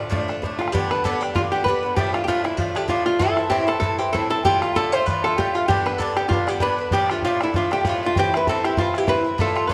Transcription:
Already playing: D2 A2 A3 D4 D5
0.10 A2 F3 A3 D4, bodhran
0.28 F3 A3 D4, bodhran
0.42 A2 F3 A3 D4, bodhran
0.58 F3 A3 D4 F4 F5, bodhran
0.68 bodhran
0.72 G2 D3 B3 D4 G4 G5, bodhran
0.91 D3 B3 D4 B4 B5, bodhran
1.04 G2 D3 B3 D4 A4 A5, bodhran
1.20 B3 D4 G4 G5, bodhran
1.25 D3
1.33 G2 D3 B3 F4 F5, bodhran
1.38 D4
1.52 B3 D4 G4 G5
1.56 D3
1.64 G2 D3 B4 B5, bodhran
1.68 B3 D4
1.83 D3 B3 D4
1.95 A2 F3 A3 D4 G4 G5, bodhran
2.13 F3 A3 D4 F4 F5, bodhran
2.24 A2 G4 F5
2.28 F3 A3 D4 F4, bodhran
2.44 F3 A3 D4 E4 E5, bodhran
2.57 A2 F3 A3 F4 F5, bodhran
2.61 D4
2.75 F3 A3 D4 G4 G5, bodhran
2.88 A2 F3 A3 D4 F4 F5, bodhran
3.06 F3 A3 D4 F4 F5
3.19 A2 E3 C4 E4 A4 A5, bodhran
3.37 E3 C4 E4 A5, bodhran
3.50 A2 E3 C4 E4 G4 G5, bodhran
3.67 E3 C4 E4 A4 A5, bodhran
3.80 A2 E3 C4 E4 A4 A5, bodhran
3.98 E3 C4 E4 G4 G5, bodhran
4.13 A2 E3 C4 E4 A4 A5, bodhran
4.30 E3 C4 E4 A4 A5
4.43 A2 D3 A3 F4 G4 G5, bodhran
4.62 A3 F4 F5, bodhran
4.66 D3
4.73 A2 D3 A3 A4 B5, bodhran
4.78 F4
4.92 D3 A3 F4 C5 C6, bodhran
5.06 A2 D3 A3 B4 B5, bodhran
5.10 F4
5.20 A5 B5
5.24 D3 A3 F4 A4, bodhran
5.36 A2 D3 A3 G4 G5, bodhran
5.40 F4
5.53 A3 F4 F5, bodhran
5.58 D3
5.66 G2 D3 B3 D4 G4 G5, bodhran
5.85 D3 B3 D4 B4 B5, bodhran
5.98 G2 D3 B3 D4 A4 A5, bodhran
6.17 D3 B3 D4 G4 G5, bodhran
6.26 G2 F4 G5
6.31 D3 B3 D4 F5, bodhran
6.47 D3 B3 D4 G4 G5, bodhran
6.60 G2 D3 B3 D4 B4 B5, bodhran
6.78 D3 B3 D4
6.91 A2 F3 A3 D4 G4 G5, bodhran
7.10 F3 A3 D4 F4, bodhran
7.22 A2 F3 A3 F4 F5, bodhran
7.27 D4
7.41 F3 A3 D4 E4 E5, bodhran
7.54 A2 F3 A3 D4 F4 F5, bodhran
7.71 F3 A3 D4 G4 G5, bodhran
7.85 A2 F3 A3 D4 F5, bodhran
7.89 F4
8.03 F3 A3 D4 F4 F5
8.14 A2 E3 G5, bodhran
8.19 C4 E4 G4
8.33 C4 E4 B4 B5, bodhran
8.37 E3
8.47 A2 E3 C4 E4 A4 A5, bodhran
8.64 E3 C4 E4 G4 G5, bodhran
8.77 A2 E3 C4 E4 F4 F5, bodhran
8.94 E3 C4 E4 G4, bodhran
9.07 A2 E3 C4 E4 B4 B5, bodhran
9.24 E3 C4 E4
9.38 A2 D3 A3 F4 A4 A5, bodhran
9.55 D3 A3 F4, bodhran
9.67 A2 D3 B4 A5, bodhran

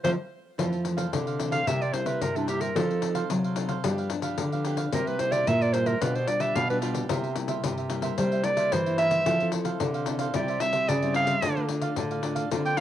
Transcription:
0.04 F3 A3 C4 C5 E5 F5, pandeiro
0.58 F2 E3 F3 A3 C4 E4 A4 C5 F5, pandeiro
0.73 pandeiro
0.84 E3 A3 C4, muted cavaquinho stroke, pandeiro
0.97 A4 C5 F5, pandeiro
1.12 C3 D3 E4 A4 C5 F5, pandeiro
1.27 A4 C5 F5, pandeiro
1.39 E3 A3 C4 E4 A4 C5 F5, pandeiro
1.51 A4 C5 F5, pandeiro
1.66 C3 G3 A#3 E4 A#4 C5 E5, pandeiro
1.81 A#4 C5 D5 E5, pandeiro
1.93 G3 A#3 E4 C5, muted cavaquinho stroke, pandeiro
2.06 A#4 B4 C5 E5, pandeiro
2.21 G2 C3 A#4, pandeiro
2.35 G3 A#3 D4 E4 A#4 C5 E5, pandeiro
2.47 E4 G4 A#4 C5 E5, pandeiro
2.60 A#4 C5 E5, pandeiro
2.76 F3 C4 D#4 A4 C5 F5, pandeiro
2.90 C4 D#4 A4, pandeiro
3.02 C4 D#4 A4, muted cavaquinho stroke, pandeiro
3.15 A4 C5 F5, pandeiro
3.30 C3 F#3 D#4 A4 C5 F5, pandeiro
3.44 A4 C5 F5, pandeiro
3.56 C4 D#4 A4 C5 F5, pandeiro
3.69 A4 C5 F5, pandeiro
3.84 G2 F3 G3 B3 D4 G4 B4 F5, pandeiro
3.98 G4 B4 F5, pandeiro
4.10 F3 B3 D4, muted cavaquinho stroke, pandeiro
4.22 G4 B4 F5, pandeiro
4.38 D3, pandeiro
4.52 F3 B3 D4 G4 B4 F5, pandeiro
4.65 D4 G4 B4 F5, pandeiro
4.77 G4 B4 F5, pandeiro
4.93 C3 G3 A#3 E4 A#4 C5 E5, pandeiro
5.07 G3 A#3 E4 B4, pandeiro
5.19 G3 A#3 E4 C5, muted cavaquinho stroke, pandeiro
5.31 A#4 C5 D5 E5, pandeiro
5.47 G2 A#2 E4 A#4 C5 E5, pandeiro
5.61 A#4 C5 D5 E5, pandeiro
5.73 G3 A#3 E4 A#4 C5 E5, pandeiro
5.86 A#4 C5 E5, pandeiro
6.01 B2 G3 D4 F4 G4 B4 D5, pandeiro
6.15 G4 B4 C5 D5, pandeiro
6.27 G3 D4 F4 D5, muted cavaquinho stroke, pandeiro
6.40 G4 B4 D5 E5, pandeiro
6.55 B2 F5, pandeiro
6.70 G3 D4 F4 G4 B4 D5, pandeiro
6.81 G3 D4 F4 G4 B4 D5, pandeiro
6.94 G4 B4 D5, pandeiro
7.09 C3 G3 A#3 E4 A#4 C5 E5, pandeiro
7.24 pandeiro
7.36 G3 A#3 E4, muted cavaquinho stroke, pandeiro
7.48 A#4 C5 E5, pandeiro
7.64 G2 C3 E4 A#4 C5 E5, pandeiro
7.78 A#4 C5 E5, pandeiro
7.90 G3 A#3 E4 A#4 C5 E5, pandeiro
8.02 A#4 C5 E5, pandeiro
8.18 C3 G3 E4 A#4 C5 E5, pandeiro
8.32 A#4 C5 E5, pandeiro
8.44 G3 A#3 E4 D5, pandeiro
8.57 A#4 C5 E5, pandeiro
8.72 G2 E3 C5, pandeiro
8.86 G3 A#3 E4 A#4 C5 E5, pandeiro
8.98 E4 A#4 C5 E5, pandeiro
9.11 A#4 C5 E5, pandeiro
9.26 F3 C4 E4 A4 C5 F5, pandeiro
9.40 C4 E4 A4, pandeiro
9.52 C4 E4 A4, pandeiro
9.65 A4 C5 F5, pandeiro
9.80 C3 D3 E4 A4 C5 F5, pandeiro
9.94 A4 C5 F5, pandeiro
10.06 C4 E4 A4 C5 F5, pandeiro
10.19 A4 C5 F5, pandeiro
10.34 C3 G3 C4 E4 G4 C5 D5 E5, pandeiro
10.48 G4 C5 E5, pandeiro
10.60 G3 C4 E4 E5, muted cavaquinho stroke, pandeiro
10.73 G4 C5 E5, pandeiro
10.89 G2 C#3 D5, pandeiro
11.02 G3 C4 E4 G4 C5 E5, pandeiro
11.14 E4 G4 C5 E5 F5, pandeiro
11.27 G4 C5 E5, pandeiro
11.42 D3 A3 D4 F4 A4 D5 F5, pandeiro
11.57 A3 D4 F4, pandeiro
11.69 A3 D4 F4, muted cavaquinho stroke, pandeiro
11.82 A4 D5 F5, pandeiro
11.96 A2 D3 D4 A4 D5 F5, pandeiro
12.11 A4 D5 F5, pandeiro
12.23 A3 D4 F4 A4 D5 F5, pandeiro
12.35 A4 D5 F5, pandeiro
12.51 D3 A#3 C4 D4 F4 A#4 C5 D5, pandeiro
12.65 A#4 C5 D5 G5, pandeiro
12.77 A#3 F5, pandeiro

